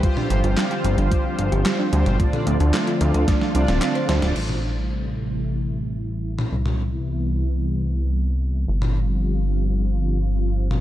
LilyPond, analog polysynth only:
\new Staff \with { instrumentName = "Analog polysynth" } { \time 4/4 \key a \minor \tempo 4 = 111 <f' g' c''>2.~ <f' g' c''>8 <f' g' c''>8 | <d' f' d''>2~ <d' f' d''>8 <d' f' d''>4. | r1 | r1 |
r1 | }